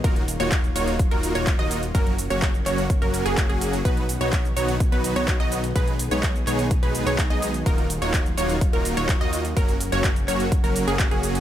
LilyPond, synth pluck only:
\new Staff \with { instrumentName = "Synth pluck" } { \time 4/4 \key ees \minor \tempo 4 = 126 bes'8 r16 des''8 r16 des''8 r16 bes'8 des''8 ees''8 r16 | bes'8 r16 des''8 r16 des''8 r16 bes'8 aes'8 aes'8 r16 | b'8 r16 des''8 r16 des''8 r16 b'8 des''8 dis''8 r16 | ces''8 r16 des''8 r16 des''8 r16 ces''8 des''8 ees''8 r16 |
bes'8 r16 des''8 r16 des''8 r16 bes'8 des''8 ees''8 r16 | bes'8 r16 des''8 r16 des''8 r16 bes'8 aes'8 aes'8 r16 | }